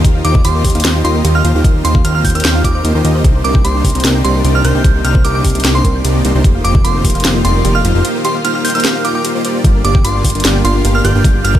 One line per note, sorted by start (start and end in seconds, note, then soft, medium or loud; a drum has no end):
0.00 3.21 D#3 medium
0.00 3.21 G3 medium
0.00 6.41 C4 medium
0.00 3.21 F4 loud
0.05 0.23 D#2 medium
0.05 0.22 A#3 medium
0.05 0.22 D#4 medium
0.05 0.22 F4 medium
0.05 0.22 G4 medium
0.05 0.13 G4 loud
0.05 0.22 C5 loud
0.05 kick loud
0.05 closed hi-hat medium
0.15 0.18 F5 loud
0.25 0.43 D#2 loud
0.25 0.37 A#3 loud
0.25 0.37 D#4 medium
0.25 0.37 F4 medium
0.25 0.33 F4 loud
0.25 0.37 G4 medium
0.25 0.37 C5 loud
0.25 0.42 D6 medium
0.25 closed hi-hat medium
0.35 0.40 F4 medium
0.35 kick loud
0.45 0.63 D#2 loud
0.45 0.62 A#3 medium
0.45 0.62 D#4 medium
0.45 0.62 F4 medium
0.45 0.48 F4 medium
0.45 0.62 G4 medium
0.45 0.62 C5 medium
0.45 0.85 C6 medium
0.45 closed hi-hat medium
0.55 0.58 A#4 medium
0.65 0.73 D#2 loud
0.65 0.73 A#3 medium
0.65 0.73 D#4 medium
0.65 0.73 F4 medium
0.65 0.73 G4 medium
0.65 0.73 G4 loud
0.65 0.72 C5 medium
0.65 kick medium
0.65 open hi-hat medium
0.70 closed hi-hat medium
0.75 0.83 D#2 loud
0.75 0.83 A#3 loud
0.75 0.83 D#4 medium
0.75 0.83 F4 medium
0.75 0.83 G4 medium
0.75 0.83 C5 loud
0.75 0.78 F5 loud
0.75 closed hi-hat medium
0.80 closed hi-hat medium
0.85 1.03 D#2 medium
0.85 1.02 A#3 medium
0.85 1.02 D#4 medium
0.85 1.02 F4 medium
0.85 0.93 F4 loud
0.85 1.02 G4 medium
0.85 1.02 C5 loud
0.85 snare loud
0.85 closed hi-hat medium
0.95 1.00 F4 medium
1.05 1.23 D#2 loud
1.05 1.22 A#3 medium
1.05 1.22 D#4 medium
1.05 1.08 F4 medium
1.05 1.22 F4 medium
1.05 1.22 G4 medium
1.05 1.22 D#5 medium
1.05 1.22 C6 medium
1.05 closed hi-hat medium
1.15 1.18 A#4 medium
1.25 1.43 D#2 loud
1.25 1.42 A#3 medium
1.25 1.42 D#4 medium
1.25 1.42 F4 medium
1.25 1.33 G4 loud
1.25 1.42 G4 medium
1.25 1.42 D#5 medium
1.25 closed hi-hat medium
1.35 1.38 F5 loud
1.35 1.43 F6 medium
1.44 1.53 D#2 loud
1.44 1.53 A#3 medium
1.44 1.53 D#4 medium
1.44 1.53 F4 loud
1.44 1.53 F4 medium
1.44 1.53 G4 medium
1.44 1.53 C5 medium
1.44 closed hi-hat medium
1.55 1.63 D#2 loud
1.55 1.63 A#3 loud
1.55 1.63 D#4 medium
1.55 1.60 F4 medium
1.55 1.63 F4 medium
1.55 1.63 G4 medium
1.55 1.63 C5 loud
1.64 1.83 D#2 loud
1.64 1.82 A#3 medium
1.64 1.82 D#4 medium
1.64 1.68 F4 medium
1.64 1.82 F4 medium
1.64 1.82 G4 medium
1.64 1.82 C5 loud
1.64 kick loud
1.64 closed hi-hat medium
1.75 1.78 A#4 medium
1.85 2.03 D#2 loud
1.85 1.97 A#3 loud
1.85 1.97 D#4 loud
1.85 1.97 F4 medium
1.85 1.93 G4 loud
1.85 1.97 G4 medium
1.85 1.97 C5 loud
1.85 2.02 C6 medium
1.85 closed hi-hat medium
1.95 1.98 F5 loud
1.95 kick loud
2.04 2.23 D#2 loud
2.04 2.22 A#3 medium
2.04 2.22 D#4 medium
2.04 2.13 F4 loud
2.04 2.22 F4 medium
2.04 2.22 G4 medium
2.04 2.22 C5 medium
2.04 2.11 F6 medium
2.04 closed hi-hat medium
2.15 2.20 F4 medium
2.15 2.21 F6 medium
2.24 2.33 D#2 loud
2.24 2.33 A#3 medium
2.24 2.33 D#4 medium
2.24 2.28 F4 medium
2.24 2.33 F4 medium
2.24 2.33 G4 medium
2.24 2.33 C5 medium
2.24 2.33 G6 medium
2.24 kick medium
2.24 open hi-hat medium
2.30 closed hi-hat medium
2.35 2.43 D#2 loud
2.35 2.43 A#3 medium
2.35 2.43 D#4 medium
2.35 2.43 F4 medium
2.35 2.43 G4 medium
2.35 2.38 A#4 medium
2.35 2.43 C5 loud
2.35 2.52 F6 medium
2.35 closed hi-hat soft
2.40 closed hi-hat medium
2.44 2.63 D#2 loud
2.44 2.62 A#3 medium
2.44 2.62 D#4 medium
2.44 2.62 F4 medium
2.44 2.53 G4 loud
2.44 2.62 G4 medium
2.44 2.62 C5 loud
2.44 snare loud
2.44 closed hi-hat medium
2.55 2.58 F5 loud
2.64 2.83 D#2 loud
2.64 2.82 A#3 medium
2.64 2.82 D#4 medium
2.64 2.68 F4 loud
2.64 2.82 G4 medium
2.64 2.82 A#4 medium
2.64 2.71 D6 medium
2.64 kick medium
2.64 closed hi-hat medium
2.75 2.83 C5 loud
2.75 2.81 D6 medium
2.84 2.93 D#2 loud
2.84 2.93 A#3 medium
2.84 2.93 D#4 medium
2.84 2.93 F4 medium
2.84 2.93 G4 medium
2.84 2.93 C5 medium
2.84 2.90 D#5 loud
2.84 closed hi-hat medium
2.95 3.03 D#2 loud
2.95 3.02 A#3 medium
2.95 3.02 D#4 medium
2.95 3.02 F4 medium
2.95 3.02 G4 medium
2.95 3.00 A#4 medium
2.95 3.02 C5 loud
3.04 3.23 D#2 loud
3.04 3.22 A#3 medium
3.04 3.22 D#4 medium
3.04 3.10 F4 medium
3.04 3.22 F4 medium
3.04 3.22 G4 medium
3.04 3.22 D#5 medium
3.04 closed hi-hat medium
3.15 3.18 C5 loud
3.24 3.43 C2 loud
3.24 11.59 A#3 medium
3.24 3.42 A#3 medium
3.24 6.41 D4 medium
3.24 3.42 D4 medium
3.24 6.41 D#4 loud
3.24 3.42 D#4 medium
3.24 3.28 G4 medium
3.24 3.42 G4 medium
3.24 3.42 C5 loud
3.24 kick loud
3.24 closed hi-hat medium
3.35 3.38 C5 medium
3.44 3.63 C2 medium
3.44 3.57 A#3 loud
3.44 3.57 D4 loud
3.44 3.57 D#4 loud
3.44 3.57 G4 medium
3.44 3.53 A#4 loud
3.44 3.57 C5 loud
3.44 3.62 D6 medium
3.44 closed hi-hat medium
3.55 3.58 G5 loud
3.55 kick loud
3.64 3.83 C2 loud
3.64 3.82 A#3 medium
3.64 3.82 D4 medium
3.64 3.82 D#4 medium
3.64 3.73 G4 loud
3.64 3.82 G4 medium
3.64 3.82 C5 medium
3.64 4.05 C6 medium
3.64 closed hi-hat medium
3.75 3.80 G4 medium
3.84 3.93 C2 loud
3.84 3.92 A#3 medium
3.84 3.92 D4 medium
3.84 3.92 D#4 medium
3.84 3.92 G4 medium
3.84 3.88 G4 medium
3.84 3.93 C5 medium
3.84 kick medium
3.84 open hi-hat medium
3.90 closed hi-hat medium
3.95 4.03 C2 loud
3.95 4.03 A#3 medium
3.95 4.03 D4 medium
3.95 4.03 D#4 medium
3.95 4.03 G4 medium
3.95 4.03 C5 loud
3.95 3.98 C5 medium
3.95 closed hi-hat soft
4.00 closed hi-hat medium
4.04 4.23 C2 medium
4.04 4.22 A#3 medium
4.04 4.22 D4 medium
4.04 4.22 D#4 medium
4.04 4.22 G4 medium
4.04 4.13 A#4 loud
4.04 4.22 C5 loud
4.04 snare loud
4.04 closed hi-hat medium
4.15 4.18 G5 loud
4.24 4.43 C2 loud
4.24 4.42 A#3 medium
4.24 4.42 D4 medium
4.24 4.42 D#4 medium
4.24 4.42 G4 medium
4.24 4.33 G4 loud
4.24 4.42 D5 medium
4.24 4.42 C6 medium
4.24 closed hi-hat medium
4.35 4.40 G4 medium
4.44 4.63 C2 loud
4.44 4.62 A#3 medium
4.44 4.62 D4 medium
4.44 4.62 D#4 medium
4.44 4.62 G4 medium
4.44 4.48 G4 medium
4.44 4.62 D5 medium
4.44 closed hi-hat medium
4.55 4.58 C5 medium
4.55 4.63 F6 medium
4.64 4.73 C2 loud
4.64 4.72 A#3 medium
4.64 4.72 D4 medium
4.64 4.72 D#4 medium
4.64 4.72 G4 medium
4.64 4.73 A#4 loud
4.64 4.72 C5 medium
4.64 5.03 G6 loud
4.64 closed hi-hat medium
4.75 4.83 C2 loud
4.75 4.83 A#3 loud
4.75 4.83 D4 medium
4.75 4.83 D#4 medium
4.75 4.83 G4 medium
4.75 4.83 C5 loud
4.75 4.78 G5 loud
4.84 5.03 C2 medium
4.84 4.93 G4 loud
4.84 kick loud
4.84 closed hi-hat medium
4.95 5.00 G4 medium
5.04 5.23 C2 loud
5.04 5.17 A#3 loud
5.04 5.17 D4 loud
5.04 5.17 D#4 medium
5.04 5.17 G4 loud
5.04 5.08 G4 medium
5.04 5.17 C5 loud
5.04 5.22 F6 medium
5.04 closed hi-hat medium
5.15 5.18 C5 medium
5.15 kick loud
5.24 5.43 C2 loud
5.24 5.42 A#3 medium
5.24 5.42 D4 medium
5.24 5.42 D#4 medium
5.24 5.42 G4 medium
5.24 5.33 A#4 loud
5.24 5.42 C5 medium
5.24 5.31 D6 medium
5.24 closed hi-hat medium
5.35 5.38 G5 loud
5.35 5.41 D6 medium
5.45 5.53 C2 loud
5.45 5.53 A#3 medium
5.45 5.53 D4 medium
5.45 5.53 D#4 medium
5.45 5.53 G4 medium
5.45 5.53 G4 loud
5.45 5.53 C5 medium
5.45 kick medium
5.45 open hi-hat medium
5.50 closed hi-hat medium
5.55 5.63 C2 loud
5.55 5.63 A#3 medium
5.55 5.63 D4 medium
5.55 5.63 D#4 medium
5.55 5.63 G4 medium
5.55 5.60 G4 medium
5.55 5.63 C5 loud
5.55 closed hi-hat soft
5.60 closed hi-hat medium
5.64 5.83 C2 medium
5.64 5.82 A#3 medium
5.64 5.82 D4 medium
5.64 5.82 D#4 medium
5.64 5.82 G4 medium
5.64 5.68 G4 medium
5.64 5.82 C5 loud
5.64 snare loud
5.64 closed hi-hat medium
5.75 5.78 C5 medium
5.75 5.81 C6 medium
5.84 6.03 C2 loud
5.84 6.02 A#3 medium
5.84 6.02 D4 medium
5.84 6.02 D#4 medium
5.84 6.02 G4 medium
5.84 5.93 A#4 loud
5.84 6.02 D5 medium
5.84 5.91 C6 medium
5.84 kick medium
5.84 closed hi-hat medium
5.95 5.98 G5 loud
6.04 6.23 C2 loud
6.04 6.22 A#3 medium
6.04 6.22 D4 medium
6.04 6.22 D#4 medium
6.04 6.22 G4 medium
6.04 6.13 G4 loud
6.04 6.22 D5 medium
6.04 closed hi-hat medium
6.15 6.21 G4 medium
6.25 6.33 C2 loud
6.25 6.33 A#3 medium
6.25 6.33 D4 medium
6.25 6.33 D#4 medium
6.25 6.33 G4 medium
6.25 6.28 G4 medium
6.25 6.33 C5 loud
6.25 closed hi-hat medium
6.35 6.43 C2 loud
6.35 6.43 A#3 loud
6.35 6.43 D4 medium
6.35 6.43 D#4 medium
6.35 6.43 G4 medium
6.35 6.38 C5 medium
6.35 6.43 C5 loud
6.44 6.63 F1 medium
6.44 9.61 D#3 medium
6.44 11.59 G3 medium
6.44 6.62 A#3 medium
6.44 9.61 F4 loud
6.44 6.62 F4 medium
6.44 6.53 G4 loud
6.44 6.62 C5 loud
6.44 kick loud
6.44 closed hi-hat medium
6.55 6.58 F5 loud
6.64 6.83 F1 loud
6.64 6.77 A#3 loud
6.64 6.77 D#4 medium
6.64 6.73 F4 loud
6.64 6.77 F4 medium
6.64 6.77 G4 medium
6.64 6.77 C5 loud
6.64 6.82 D6 loud
6.64 closed hi-hat medium
6.75 6.80 F4 medium
6.75 kick loud
6.84 7.03 F1 loud
6.84 7.02 A#3 medium
6.84 7.02 D#4 medium
6.84 6.88 F4 medium
6.84 7.02 F4 medium
6.84 7.02 G4 medium
6.84 7.02 C5 medium
6.84 7.25 C6 medium
6.84 closed hi-hat medium
6.95 6.98 A#4 medium
7.04 7.13 F1 loud
7.04 7.12 A#3 medium
7.04 7.12 D#4 medium
7.04 7.12 F4 medium
7.04 7.13 G4 loud
7.04 7.12 C5 medium
7.04 kick medium
7.04 open hi-hat medium
7.10 closed hi-hat medium
7.15 7.23 F1 loud
7.15 7.23 A#3 medium
7.15 7.23 D#4 medium
7.15 7.23 F4 medium
7.15 7.23 G4 medium
7.15 7.23 C5 loud
7.15 7.18 F5 loud
7.15 closed hi-hat medium
7.20 closed hi-hat medium
7.24 7.43 F1 medium
7.24 7.42 A#3 medium
7.24 7.42 D#4 medium
7.24 7.42 F4 medium
7.24 7.33 F4 loud
7.24 7.42 G4 medium
7.24 7.42 C5 loud
7.24 snare loud
7.24 closed hi-hat medium
7.35 7.40 F4 medium
7.44 7.63 F1 loud
7.44 7.62 A#3 medium
7.44 7.62 D#4 medium
7.44 7.62 F4 medium
7.44 7.48 F4 medium
7.44 7.62 G4 medium
7.44 7.62 D5 medium
7.44 7.62 C6 medium
7.44 closed hi-hat medium
7.55 7.58 A#4 medium
7.64 7.83 F1 loud
7.64 7.82 A#3 medium
7.64 7.82 D#4 medium
7.64 7.82 F4 medium
7.64 7.82 G4 medium
7.64 7.73 G4 loud
7.64 7.82 D5 medium
7.64 closed hi-hat medium
7.75 7.78 F5 loud
7.75 7.83 F6 medium
7.84 7.93 F1 loud
7.84 7.92 A#3 medium
7.84 7.92 D#4 medium
7.84 7.92 F4 medium
7.84 7.93 F4 loud
7.84 7.92 G4 medium
7.84 7.92 C5 medium
7.84 closed hi-hat medium
7.95 8.03 F1 loud
7.95 8.03 A#3 loud
7.95 8.03 D#4 medium
7.95 8.03 F4 medium
7.95 8.00 F4 medium
7.95 8.03 G4 medium
7.95 8.03 C5 loud
8.04 8.22 A#3 medium
8.04 8.22 D#4 medium
8.04 8.22 F4 medium
8.04 8.08 F4 medium
8.04 8.22 G4 medium
8.04 8.22 C5 loud
8.04 closed hi-hat medium
8.15 8.18 A#4 medium
8.25 8.37 A#3 loud
8.25 8.37 D#4 medium
8.25 8.37 F4 medium
8.25 8.37 G4 loud
8.25 8.33 G4 loud
8.25 8.37 C5 loud
8.25 8.42 C6 medium
8.25 closed hi-hat medium
8.35 8.38 F5 loud
8.45 8.62 A#3 medium
8.45 8.62 D#4 medium
8.45 8.62 F4 medium
8.45 8.53 F4 loud
8.45 8.62 G4 medium
8.45 8.62 C5 medium
8.45 8.51 F6 medium
8.45 closed hi-hat medium
8.55 8.60 F4 medium
8.55 8.61 F6 medium
8.65 8.73 A#3 medium
8.65 8.73 D#4 medium
8.65 8.68 F4 medium
8.65 8.73 F4 medium
8.65 8.73 G4 medium
8.65 8.73 C5 medium
8.65 8.73 G6 medium
8.65 open hi-hat medium
8.70 closed hi-hat medium
8.75 8.83 A#3 medium
8.75 8.83 D#4 medium
8.75 8.83 F4 medium
8.75 8.83 G4 medium
8.75 8.78 A#4 medium
8.75 8.83 C5 loud
8.75 8.92 F6 medium
8.75 closed hi-hat medium
8.80 closed hi-hat medium
8.85 9.02 A#3 medium
8.85 9.02 D#4 medium
8.85 9.02 F4 medium
8.85 9.02 G4 medium
8.85 8.93 G4 loud
8.85 9.02 C5 loud
8.85 snare loud
8.85 closed hi-hat medium
8.95 8.98 F5 loud
9.05 9.22 A#3 medium
9.05 9.22 D#4 medium
9.05 9.22 F4 medium
9.05 9.11 F4 medium
9.05 9.22 G4 medium
9.05 9.22 A#4 medium
9.05 9.11 D6 medium
9.05 closed hi-hat medium
9.15 9.20 G5 loud
9.15 9.21 D6 medium
9.25 9.33 A#3 medium
9.25 9.33 D#4 medium
9.25 9.33 F4 medium
9.25 9.33 G4 medium
9.25 9.28 G4 medium
9.25 9.33 C5 medium
9.25 closed hi-hat medium
9.35 9.42 A#3 medium
9.35 9.42 D#4 medium
9.35 9.42 F4 medium
9.35 9.42 G4 medium
9.35 9.42 C5 medium
9.35 9.40 C5 loud
9.45 9.62 A#3 medium
9.45 9.62 D#4 medium
9.45 9.62 F4 medium
9.45 9.62 G4 medium
9.45 9.53 C5 medium
9.45 9.62 D5 medium
9.45 closed hi-hat medium
9.55 9.58 C5 medium
9.64 9.83 G1 medium
9.64 11.59 D3 medium
9.64 9.82 A#3 medium
9.64 9.82 D4 medium
9.64 9.82 F4 medium
9.64 11.59 F4 loud
9.64 9.68 F4 medium
9.64 9.82 G4 medium
9.64 9.82 D5 loud
9.64 kick loud
9.64 closed hi-hat medium
9.75 9.78 A#4 medium
9.84 10.03 G1 loud
9.84 9.97 A#3 loud
9.84 9.97 D4 loud
9.84 9.97 F4 loud
9.84 9.97 G4 medium
9.84 9.93 G4 loud
9.84 9.97 D5 loud
9.84 10.02 D6 medium
9.84 closed hi-hat medium
9.95 9.98 G5 loud
9.95 kick loud
10.04 10.23 G1 loud
10.04 10.22 A#3 medium
10.04 10.22 D4 medium
10.04 10.22 F4 medium
10.04 10.13 F4 loud
10.04 10.22 G4 medium
10.04 10.22 D5 medium
10.04 10.45 C6 medium
10.04 closed hi-hat medium
10.15 10.20 F4 medium
10.24 10.33 G1 loud
10.24 10.28 F4 medium
10.24 10.33 G4 medium
10.24 kick medium
10.24 open hi-hat loud
10.30 closed hi-hat medium
10.35 10.43 G1 medium
10.35 10.43 A#3 medium
10.35 10.43 D4 medium
10.35 10.43 F4 medium
10.35 10.43 G4 medium
10.35 10.38 A#4 medium
10.35 10.43 D5 loud
10.35 closed hi-hat medium
10.40 closed hi-hat medium
10.45 10.63 G1 loud
10.45 10.62 A#3 medium
10.45 10.62 D4 medium
10.45 10.62 F4 medium
10.45 10.62 G4 medium
10.45 10.53 G4 loud
10.45 10.62 D5 loud
10.45 snare loud
10.45 closed hi-hat medium
10.55 10.58 G5 loud
10.65 10.83 G1 loud
10.65 10.82 A#3 medium
10.65 10.82 D4 medium
10.65 10.82 F4 medium
10.65 10.73 F4 loud
10.65 10.82 G4 medium
10.65 10.82 F5 medium
10.65 10.82 C6 medium
10.65 closed hi-hat medium
10.75 10.80 F4 medium
10.85 11.03 G1 loud
10.85 11.02 A#3 medium
10.85 11.02 D4 medium
10.85 11.02 F4 medium
10.85 10.88 F4 medium
10.85 11.02 G4 medium
10.85 11.02 F5 medium
10.85 closed hi-hat medium
10.95 10.98 A#4 medium
10.95 11.03 F6 medium
11.05 11.13 G1 loud
11.05 11.13 A#3 medium
11.05 11.12 D4 medium
11.05 11.12 F4 medium
11.05 11.13 G4 loud
11.05 11.13 G4 medium
11.05 11.12 D5 loud
11.05 11.43 G6 medium
11.05 closed hi-hat medium
11.15 11.23 G1 loud
11.15 11.23 A#3 loud
11.15 11.23 D4 medium
11.15 11.23 F4 medium
11.15 11.23 G4 medium
11.15 11.23 D5 loud
11.15 11.18 G5 loud
11.24 11.43 G1 loud
11.24 11.33 F4 loud
11.24 kick loud
11.24 closed hi-hat medium
11.35 11.40 F4 medium
11.44 11.59 G1 medium
11.44 11.57 A#3 loud
11.44 11.57 D4 loud
11.44 11.57 F4 loud
11.44 11.48 F4 medium
11.44 11.57 G4 medium
11.44 11.57 D5 loud
11.44 11.59 F6 medium
11.44 closed hi-hat medium
11.55 11.58 A#4 medium
11.55 kick loud